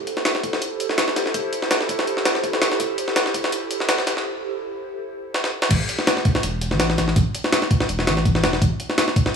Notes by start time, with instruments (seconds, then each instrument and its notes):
Already playing: ambient pad E4 G4 A4 C5
0.07 closed hi-hat
0.17 snare
0.25 snare, closed hi-hat
0.35 snare
0.43 kick, closed hi-hat
0.53 snare
0.62 closed hi-hat
0.80 closed hi-hat
0.89 snare
0.98 snare, closed hi-hat
1.08 snare
1.16 snare, closed hi-hat
1.26 snare
1.34 kick, closed hi-hat
1.53 closed hi-hat
1.62 snare
1.71 snare, closed hi-hat
1.81 snare
1.89 kick, closed hi-hat
1.99 snare
2.07 closed hi-hat
2.17 snare
2.25 snare, closed hi-hat
2.35 snare
2.44 kick, closed hi-hat
2.53 snare
2.62 snare, closed hi-hat
2.72 snare
2.80 kick, closed hi-hat
2.98 closed hi-hat
3.08 snare
3.16 snare, closed hi-hat
3.26 snare
3.34 kick, closed hi-hat
3.44 snare
3.52 closed hi-hat
3.71 closed hi-hat
3.80 snare
3.89 snare, closed hi-hat
3.98 snare
4.07 snare, closed hi-hat
4.17 snare
5.34 snare
5.44 snare
5.62 snare
5.71 sub bass A1, kick, closed hi-hat, crash
5.89 closed hi-hat
5.99 snare
6.07 snare, closed hi-hat
6.17 snare
6.25 kick, closed hi-hat
6.35 snare
6.43 sub bass E1, closed hi-hat
6.61 closed hi-hat
6.71 sub bass A1, snare
6.80 snare, closed hi-hat
6.90 snare
6.98 sub bass A1, snare, closed hi-hat
7.08 snare
7.16 sub bass A1, kick, closed hi-hat
7.35 closed hi-hat
7.44 snare
7.53 snare, closed hi-hat
7.62 snare
7.71 kick, closed hi-hat
7.80 snare
7.89 sub bass E1, closed hi-hat
7.99 snare
8.07 sub bass A1, snare, closed hi-hat
8.17 snare
8.25 kick, closed hi-hat
8.35 snare
8.43 sub bass E1, snare, closed hi-hat
8.53 snare
8.62 sub bass A1, kick, closed hi-hat
8.80 closed hi-hat
8.90 snare
8.98 snare, closed hi-hat
9.08 snare
9.16 kick, closed hi-hat
9.26 snare